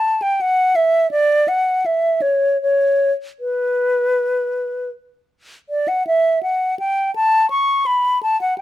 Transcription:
flute
Already playing: A5
0.22 G5
0.41 F#5
0.76 E5
1.11 D5
1.48 F#5
1.86 E5
2.22 C#5
2.62 C#5
3.40 B4
5.70 D5
5.88 F#5
6.07 E5
6.43 F#5
6.79 G5
7.16 A5
7.50 C#6
7.86 B5
8.23 A5
8.41 F#5
8.58 G5

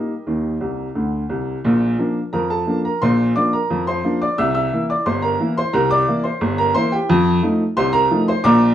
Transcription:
upright piano
Already playing: G3 A#3 D#4 G4 A#4 D#5
0.27 D#2 D#3
0.61 C2 C3
0.95 D2 D3
1.29 C2 C3
1.65 A#1 A#2
1.99 F3 A#3 D4
2.33 F2 F3 A#4 A#5
2.50 A4 A5
2.67 F3 A#3 D4
2.85 A#4 A#5
3.02 A#1 A#2 C5 C6
3.36 F3 A#3 D4 D5 D6
3.53 A#4 A#5
3.70 F2 F3
3.87 C5 C6
4.04 F3 A#3 D4
4.22 D5 D6
4.38 C2 C3 E5 E6
4.55 E5 E6
4.73 E3 A#3 E4
4.90 D5 D6
5.06 G1 G2 C5 C6
5.22 A#4 A#5
5.40 E3 A#3 E4
5.57 C5 C6
5.73 C2 C3 A#4 A#5
5.91 D5 D6
6.07 E3 A#3 E4
6.24 C5 C6
6.41 G1 G2
6.58 A#4 A#5
6.74 E3 A#3 E4 C5 C6
6.92 G4 G5
7.09 F2 F3
7.43 F3 A3 D#4
7.77 C2 C3 C5 C6
7.93 A#4 A#5
8.11 F3 A3 D#4
8.28 C5 C6
8.44 A#1 A#2 D5 A#5 D6

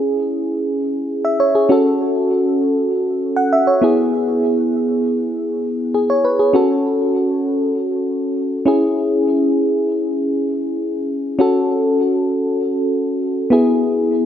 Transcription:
fm electric piano
Already playing: C#4 E4 G#4
1.25 E5
1.40 C#5
1.55 G#4
1.69 C#4 F#4 A4
3.36 F#5
3.53 E5
3.67 C#5
3.82 B3 E4 G#4
5.94 G#4
6.10 C#5
6.25 B4
6.39 G#4
6.53 C#4 F#4 A4
8.66 C#4 E4 G#4
11.39 C#4 F#4 A4
13.50 B3 E4 G#4

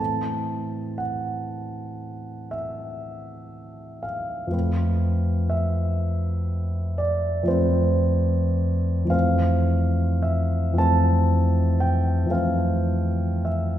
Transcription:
grand piano
Already playing: A2 E3 A3 C4 A4 A5
0.98 F#5
2.51 E5
4.03 F5
4.47 F2 F3 A3
4.52 C4 B4
5.50 E5
6.98 D5
7.43 F2 F3 A3
7.48 C4 B4 C5
9.05 F2 E3 A3
9.10 C4 C5 F5
10.22 E5
10.73 F2 E3 A3
10.78 C4 C5 A5
11.80 G5
12.26 F2 E3 A3
12.30 C4 C5 F5
13.45 E5

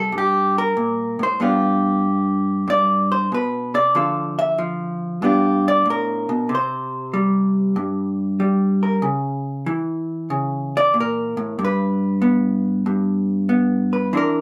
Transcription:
hollow-body jazz guitar
Already playing: C3 G3 E4 A4
0.12 G2
0.18 G4
0.58 A#4
0.77 A#2
1.19 A2 C5
1.40 G2 B3 D4 F4 G4
2.68 G2 D5
3.12 C5
3.32 B2 B4
3.74 C3 D5
3.95 D3 F3 F4 A4
4.39 E5
4.58 F3
5.22 G2 B3 D4 F4 G4
5.68 D5
5.86 A2
5.90 A#4
6.29 B2
6.49 C3
6.55 C5
7.14 G3
7.76 G2
8.40 G3
8.83 A#4
9.02 C#3
9.66 E3
10.30 C#3
10.77 D5
10.94 A#2
11.00 A#4
11.37 A2
11.59 G2
11.65 B4
12.22 B3
12.86 G2
13.49 B3
13.93 B4
14.13 E3 C4 D4
14.17 A#4

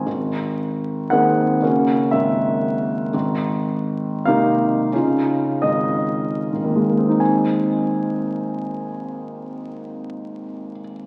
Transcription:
grand piano
0.06 G#1
1.10 D#3 A#3 C4 G#4 F#5
1.62 C#3 A#3 C#4 F#4
2.11 G#1 E5
3.14 G#1
4.25 C3 A#3 D#4 G4 F5
4.93 C#3 C#4 D#4 F4
5.62 G#1 D#5
6.53 G#1
6.64 D#2
6.76 G#3
6.87 A#3
6.98 C4
7.09 D#4
7.20 G#5

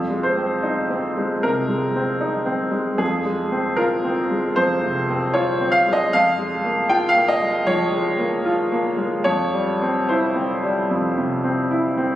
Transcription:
upright piano
Already playing: F2
0.10 G#3
0.23 C5
0.37 C4
0.63 D#4
0.90 C4
1.17 G#3
1.43 C3 A#4
1.69 G#3
1.95 C4
2.21 D#4
2.46 C4
2.72 G#3
2.98 F2 G#4
3.25 G#3
3.52 C4
3.77 F4 A#4
4.04 C4
4.30 G#3
4.56 F2 C5
4.83 C3
5.09 C4
5.34 F4 C#5
5.61 C4
5.72 F5
5.87 G#3
5.93 D#5
6.13 F2 F5
6.39 G#3
6.65 A#3
6.89 F4 G5
7.09 F5
7.16 A#3
7.28 D#5
7.42 G#3
7.67 F3 C#5
7.92 G#3
8.19 A#3
8.45 F4
8.72 A#3
8.97 G#3
9.24 F2 C#5
9.53 G3
9.82 C4
10.09 E4 C5
10.35 C4
10.63 G3
10.91 F2
11.17 C3
11.44 C4
11.71 E4
11.97 C4

